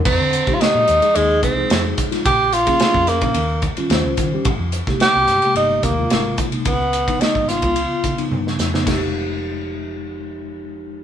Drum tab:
CC |x---------------|----------------|----------------|----------------|
RD |--x-x-xxx-x-x-xx|x-xxx-xxx-xxx-x-|x-x-x-xxx-x-x-xx|x-xxx-xxx-xx----|
HH |--p---p---p---p-|--p---p---p---p-|--p---p---p---p-|--p---p---p---p-|
SD |----o-------o--o|----o-o-----o---|---oo-o-----o---|----o-o------ooo|
T1 |----------------|----------------|----------------|------------o---|
BD |o--o------o---o-|o--o-o-o--o---o-|o--o------o---o-|o--o-o-o--o-----|

CC |x---------------|
RD |----------------|
HH |----------------|
SD |o---------------|
T1 |----------------|
BD |o---------------|